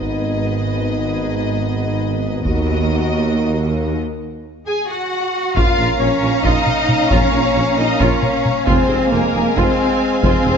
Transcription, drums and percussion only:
0.02 taiko
2.45 taiko
5.57 taiko
6.44 taiko
6.67 taiko mid
6.89 taiko mid
7.11 taiko
8.00 taiko
8.22 taiko mid
8.45 taiko mid
8.67 taiko
9.57 taiko
10.23 taiko

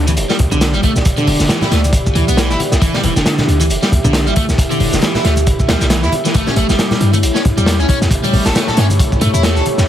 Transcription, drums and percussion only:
0.07 closed hi-hat, high conga, shaker
0.17 closed hi-hat, shaker
0.30 snare, shaker
0.39 kick, closed hi-hat
0.51 high conga, low conga, shaker
0.61 snare, closed hi-hat, shaker
0.74 shaker
0.82 kick, closed hi-hat, high conga
0.96 snare, shaker
1.05 kick, closed hi-hat, shaker
1.17 closed hi-hat, high conga, shaker
1.27 open hi-hat, low conga
1.40 snare, shaker
1.49 snare, closed hi-hat, high conga, shaker
1.61 snare, low conga, shaker
1.72 snare, closed hi-hat
1.84 closed hi-hat, high conga, shaker
1.93 kick, closed hi-hat, shaker
2.06 kick, shaker
2.15 closed hi-hat
2.28 closed hi-hat, high conga, shaker
2.37 snare, closed hi-hat, shaker
2.50 snare, shaker
2.60 closed hi-hat, high conga
2.72 snare, shaker
2.82 kick, closed hi-hat, shaker
2.94 snare, high conga, shaker
3.03 closed hi-hat, low conga
3.16 snare, shaker
3.26 snare, closed hi-hat, high conga, shaker
3.38 snare, low conga, shaker
3.49 closed hi-hat
3.60 closed hi-hat, high conga, shaker
3.70 closed hi-hat, shaker
3.83 snare, shaker
3.92 kick, closed hi-hat
4.04 high conga, low conga, shaker
4.13 snare, closed hi-hat, shaker
4.27 shaker
4.36 kick, closed hi-hat, high conga
4.49 snare, shaker
4.58 kick, closed hi-hat, shaker
4.71 closed hi-hat, high conga, shaker
4.80 open hi-hat, low conga
4.93 snare, shaker
5.02 snare, closed hi-hat, high conga, shaker
5.15 snare, low conga, shaker
5.25 snare, closed hi-hat
5.36 closed hi-hat, high conga, shaker
5.47 kick, closed hi-hat, shaker
5.59 kick, shaker
5.69 snare, closed hi-hat
5.81 snare, high conga, shaker
5.90 snare, closed hi-hat, shaker
6.03 snare, shaker
6.12 closed hi-hat, high conga
6.25 snare, shaker
6.34 kick, closed hi-hat, shaker
6.47 snare, high conga, shaker
6.56 closed hi-hat, low conga
6.69 snare, shaker
6.79 snare, closed hi-hat, high conga, shaker
6.91 snare, low conga, shaker
7.01 closed hi-hat
7.13 closed hi-hat, high conga, shaker
7.23 closed hi-hat, shaker
7.36 snare, shaker
7.45 kick, closed hi-hat
7.58 high conga, low conga, shaker
7.66 snare, closed hi-hat, shaker
7.80 shaker
7.88 kick, closed hi-hat, high conga
8.01 snare, shaker
8.11 kick, closed hi-hat, shaker
8.24 closed hi-hat, high conga, shaker
8.33 open hi-hat, low conga
8.46 snare, shaker
8.55 snare, closed hi-hat, high conga, shaker
8.67 snare, low conga, shaker
8.77 snare, closed hi-hat
8.90 closed hi-hat, high conga, shaker
8.99 kick, closed hi-hat, shaker
9.12 kick, shaker
9.21 closed hi-hat
9.34 closed hi-hat, high conga, shaker
9.43 snare, closed hi-hat, shaker
9.57 snare, shaker
9.66 closed hi-hat, high conga
9.78 snare, shaker

